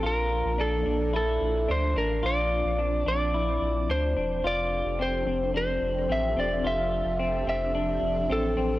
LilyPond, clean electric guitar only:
\new Staff \with { instrumentName = "Clean electric guitar" } { \time 4/4 \key f \major \tempo 4 = 109 f'4 d'8 d'8 e'4 d'8 d'8 | f'4 d'8 d'8 e'4 d'8 d'8 | f'4 c'8 c'8 d'4 c'8 c'8 | f'4 c'8 c'8 d'4 c'8 c'8 | }